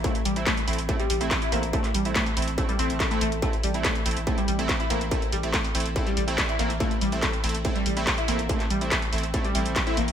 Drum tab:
HH |x-x-o-x-x-x-oxx-x-x-o-x-x-x-o-x-|x-x-o-x-x-o-oxx-x-x-o-x-x-x-o-x-|x-x-o-x-x-x-oxx-x-x-o-x-x-x-o-x-|x-x-o-x-x-o-oxx-x-x-o-x-x-x-o-x-|
CP |--------x---------------x-------|--x-----x---------------x-------|--------x---------------x-------|--------x---------------x-------|
BD |o-------o-------o-------o-------|o-------o-------o-------o-------|o-------o-------o-------o-------|o-------o-------o-------o-------|

HH |x-x-o-x-x-x-oxx-x-x-o-x-x-x-o-x-|x-x-o-x-x-o-oxx-x-x-o-x-x-x-o-x-|
CP |--------x---------------x-------|--x-----x---------------x-------|
BD |o-------o-------o-------o-------|o-------o-------o-------o-------|